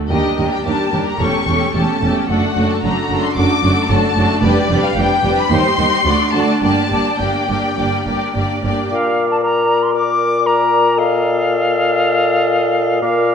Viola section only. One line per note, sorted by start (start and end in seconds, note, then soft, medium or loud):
0.00 0.10 A3 soft
0.10 0.37 G3 soft
0.10 0.37 D4 soft
0.38 0.64 G3 soft
0.38 0.64 D4 soft
0.65 0.91 G3 soft
0.65 0.91 D4 soft
0.92 1.19 G3 soft
0.92 1.19 D4 soft
1.20 1.46 A3 soft
1.20 1.46 C#4 soft
1.48 1.74 A3 soft
1.48 1.73 C#4 soft
1.75 2.01 A3 soft
1.75 2.01 C#4 soft
2.02 2.28 A3 soft
2.02 2.29 C#4 soft
2.29 2.55 A3 soft
2.29 2.55 D4 soft
2.56 2.81 A3 soft
2.56 2.81 D4 soft
2.82 3.08 A3 soft
2.82 3.08 D4 soft
3.09 3.35 A3 soft
3.09 3.35 D4 soft
3.36 3.61 A3 soft
3.36 3.61 D4 soft
3.62 3.88 A3 soft
3.62 3.88 D4 soft
3.90 4.16 A3 soft
3.90 4.15 D4 soft
4.17 4.43 A3 soft
4.17 4.42 D4 soft
4.43 4.69 G3 soft
4.43 4.69 D4 soft
4.70 4.96 G3 soft
4.70 4.96 D4 soft
4.97 5.23 G3 soft
4.97 5.23 D4 soft
5.24 5.50 G3 soft
5.24 5.51 D4 soft
5.51 5.77 G3 soft
5.51 5.77 D#4 soft
5.78 6.05 G3 soft
5.78 6.05 D#4 soft
6.06 6.33 A3 soft
6.06 6.33 D4 soft
6.34 6.62 A3 soft
6.34 6.61 D4 soft
6.62 6.90 A#3 soft
6.62 6.90 D4 soft
6.91 7.19 A#3 soft
6.91 7.19 D4 soft
7.20 7.47 A#3 soft
7.20 7.48 D4 soft
7.49 7.76 A#3 soft
7.49 7.76 D4 soft
7.77 8.05 A#3 soft
7.77 8.05 D4 soft
8.06 8.34 A#3 soft
8.06 8.34 D4 soft
8.35 8.62 A#3 soft
8.35 8.63 D4 soft
8.64 8.91 A#3 soft
8.64 8.91 D4 soft